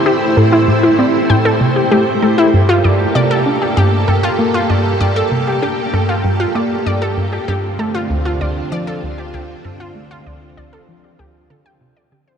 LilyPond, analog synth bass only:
\new Staff \with { instrumentName = "Analog synth bass" } { \clef bass \time 4/4 \key g \dorian \tempo 4 = 97 e'8 a,8 a,8 c'8 a,8 c8 a8 a8 | g,8 g,8 c8 d'8 g,8 g,8 bes8 g,8 | g,8 c8 d'8 g,8 g,8 bes8 g,8 g,8 | g,8 a8 d,8 d,8 f8 d,8 d,8 g,8 |
a8 d,8 d,8 f8 d,8 d8 c8 d8 | }